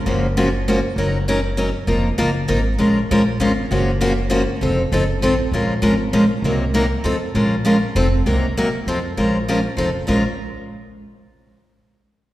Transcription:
0.06 0.79 F#1 medium
0.06 0.26 C#3 medium
0.06 0.26 F3 medium
0.06 0.26 A#3 medium
0.06 0.26 C#4 medium
0.06 0.26 F#4 medium
0.37 0.47 C#3 medium
0.37 0.47 F3 medium
0.37 0.48 A#3 medium
0.37 0.47 C#4 medium
0.37 0.48 F#4 medium
0.68 0.78 C#3 medium
0.68 0.78 F3 medium
0.68 0.78 A#3 medium
0.68 0.78 C#4 medium
0.68 0.79 F#4 medium
0.96 1.69 F#1 medium
0.96 1.17 F#3 medium
0.96 1.17 C#4 medium
0.96 1.17 D#4 medium
0.96 1.17 A#4 medium
1.28 1.38 F#3 loud
1.28 1.39 C#4 medium
1.28 1.39 D#4 loud
1.28 1.39 A#4 loud
1.57 1.68 F#3 medium
1.57 1.69 C#4 medium
1.57 1.69 D#4 medium
1.57 1.69 A#4 medium
1.87 2.12 F1 medium
1.87 2.07 F3 medium
1.87 2.07 A#3 medium
1.87 2.08 D#4 medium
1.87 2.07 F4 medium
1.87 2.08 A#4 medium
2.18 2.44 F#1 medium
2.18 2.29 F3 medium
2.18 2.29 A#3 medium
2.18 2.29 D#4 medium
2.18 2.29 F4 medium
2.18 2.29 A#4 medium
2.48 2.75 G#1 medium
2.48 2.59 F3 medium
2.48 2.59 A#3 medium
2.48 2.59 D#4 medium
2.48 2.60 F4 medium
2.48 2.59 A#4 medium
2.78 3.04 A#1 medium
2.78 2.98 F3 medium
2.78 2.98 G#3 medium
2.78 2.99 C#4 medium
2.78 2.99 F4 medium
2.78 2.99 A#4 medium
3.11 3.36 A#1 medium
3.11 3.21 F3 medium
3.11 3.21 G#3 medium
3.11 3.21 C#4 medium
3.11 3.21 F4 medium
3.11 3.22 A#4 medium
3.40 3.66 G#1 medium
3.40 3.51 F3 medium
3.40 3.51 G#3 medium
3.40 3.51 C#4 medium
3.40 3.51 F4 medium
3.40 3.51 A#4 medium
3.71 4.44 F#1 medium
3.71 3.90 C#3 medium
3.71 3.90 F3 medium
3.71 3.90 A#3 medium
3.71 3.91 C#4 medium
3.71 3.90 F#4 medium
4.01 4.11 C#3 medium
4.01 4.12 F3 medium
4.01 4.12 A#3 loud
4.01 4.12 C#4 loud
4.01 4.12 F#4 loud
4.30 4.41 C#3 medium
4.30 4.41 F3 medium
4.30 4.42 A#3 medium
4.30 4.41 C#4 medium
4.30 4.42 F#4 medium
4.61 4.86 F1 medium
4.61 4.81 F3 medium
4.61 4.81 C4 medium
4.61 4.81 D#4 medium
4.61 4.81 A4 medium
4.92 5.18 F#1 loud
4.92 5.03 F3 medium
4.92 5.03 C4 medium
4.92 5.03 D#4 loud
4.92 5.03 A4 medium
5.21 5.48 A1 medium
5.21 5.33 F3 medium
5.21 5.33 C4 medium
5.21 5.33 D#4 medium
5.21 5.33 A4 loud
5.52 5.76 A#1 medium
5.52 5.72 F3 medium
5.52 5.72 G#3 medium
5.52 5.73 C#4 medium
5.52 5.73 F4 medium
5.52 5.73 A#4 medium
5.82 6.08 G#1 medium
5.82 5.93 F3 medium
5.82 5.93 G#3 medium
5.82 5.93 C#4 medium
5.82 5.93 F4 medium
5.82 5.93 A#4 loud
6.13 6.39 A#1 medium
6.13 6.24 F3 medium
6.13 6.24 G#3 medium
6.13 6.24 C#4 medium
6.13 6.24 F4 medium
6.13 6.24 A#4 medium
6.42 6.91 C2 medium
6.42 6.63 C3 medium
6.42 6.64 F#3 medium
6.42 6.63 A#3 medium
6.42 6.64 D#4 medium
6.42 6.64 A#4 medium
6.74 6.84 C3 medium
6.74 6.85 F#3 medium
6.74 6.85 A#3 medium
6.74 6.85 D#4 medium
6.74 6.85 A#4 medium
7.04 7.28 F2 medium
7.04 7.15 F3 medium
7.04 7.15 C4 medium
7.04 7.15 D#4 medium
7.04 7.15 A4 medium
7.35 7.83 A#1 medium
7.35 7.54 F3 medium
7.35 7.54 G#3 medium
7.35 7.54 C#4 medium
7.35 7.54 F4 medium
7.35 7.55 A#4 medium
7.65 7.75 F3 medium
7.65 7.76 G#3 medium
7.65 7.76 C#4 medium
7.65 7.76 F4 medium
7.65 7.76 A#4 loud
7.95 8.20 F1 medium
7.95 8.06 F3 medium
7.95 8.06 C4 medium
7.95 8.06 D#4 medium
7.95 8.06 A4 loud
8.26 8.75 C2 medium
8.26 8.45 C3 medium
8.26 8.45 F#3 medium
8.26 8.45 A#3 medium
8.26 8.46 D#4 medium
8.26 8.46 A#4 medium
8.57 8.67 C3 medium
8.57 8.67 F#3 medium
8.57 8.67 A#3 medium
8.57 8.68 D#4 medium
8.57 8.68 A#4 medium
8.87 9.11 F2 medium
8.87 8.98 F3 medium
8.87 8.98 C4 medium
8.87 8.98 D#4 medium
8.87 8.98 A4 medium
9.17 9.66 A#1 medium
9.17 9.36 F3 medium
9.17 9.36 G#3 medium
9.17 9.36 C#4 medium
9.17 9.37 F4 medium
9.17 9.37 A#4 medium
9.48 9.58 F3 medium
9.48 9.58 G#3 medium
9.48 9.59 C#4 medium
9.48 9.59 F4 medium
9.48 9.59 A#4 medium
9.77 10.01 F1 medium
9.77 9.88 F3 medium
9.77 9.88 C4 medium
9.77 9.88 D#4 medium
9.77 9.89 A4 medium
10.07 10.24 A#1 medium
10.07 10.22 A#2 medium
10.07 10.22 F3 medium
10.07 10.22 G#3 medium
10.07 10.22 C#4 medium
10.07 10.22 F4 medium
10.07 10.23 A#4 medium

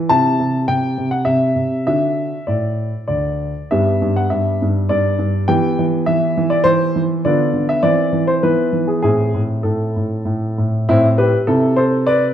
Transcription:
0.00 0.10 E3 medium
0.09 0.38 C3 medium
0.09 1.83 E4 soft
0.09 0.64 A5 medium
0.40 0.67 C3 medium
0.68 0.96 C3 medium
0.68 1.08 G5 medium
0.98 1.25 C3 soft
1.11 1.26 F#5 medium
1.25 1.54 C3 medium
1.25 1.85 E5 medium
1.56 1.85 C3 soft
1.87 2.30 D3 soft
1.87 2.37 D4 soft
1.87 2.36 F#4 soft
1.87 2.48 E5 medium
2.47 2.91 A2 soft
2.47 3.06 D5 medium
3.08 3.52 D2 soft
3.08 3.70 D5 medium
3.71 4.00 G2 medium
3.71 5.44 B3 soft
3.71 5.45 G4 soft
3.71 4.16 E5 medium
4.02 4.30 G2 medium
4.16 4.31 F#5 medium
4.30 4.60 G2 soft
4.30 4.66 E5 medium
4.62 4.89 G2 medium
4.89 5.17 G2 medium
4.89 5.48 D5 medium
5.19 5.47 G2 soft
5.48 5.77 E3 medium
5.48 7.21 B3 soft
5.48 7.21 G4 soft
5.48 5.83 G5 medium
5.79 6.06 E3 medium
6.06 6.36 E3 medium
6.06 6.51 E5 medium
6.37 6.63 E3 medium
6.50 6.65 D5 medium
6.64 6.94 E3 medium
6.64 7.00 C5 loud
6.96 7.24 E3 medium
7.25 7.52 D3 medium
7.25 7.80 B3 medium
7.25 7.80 F4 soft
7.25 7.64 D5 medium
7.54 7.82 D3 medium
7.69 7.83 E5 medium
7.83 8.11 E3 medium
7.83 8.39 C4 soft
7.83 8.39 E4 soft
7.83 8.23 D5 medium
8.13 8.42 E3 medium
8.27 8.43 C5 medium
8.43 8.71 E3 medium
8.43 9.00 B3 soft
8.43 9.00 E4 soft
8.43 8.88 B4 medium
8.73 9.02 E3 soft
8.88 9.01 G#4 medium
9.02 9.33 A2 medium
9.02 10.85 C4 soft
9.02 10.85 E4 soft
9.02 9.40 G#4 medium
9.35 9.63 A2 soft
9.63 9.95 A2 soft
9.63 10.57 A4 medium
9.96 10.24 A2 soft
10.25 10.56 A2 soft
10.58 10.87 A2 soft
10.89 11.31 A2 medium
10.89 11.17 C4 medium
10.89 11.06 E4 medium
11.18 11.46 G4 medium
11.18 11.36 B4 medium
11.47 12.33 C3 medium
11.47 11.75 E4 medium
11.47 11.76 A4 medium
11.76 12.05 A4 medium
11.76 12.06 C5 medium
12.07 12.34 B4 medium
12.07 12.24 D5 medium

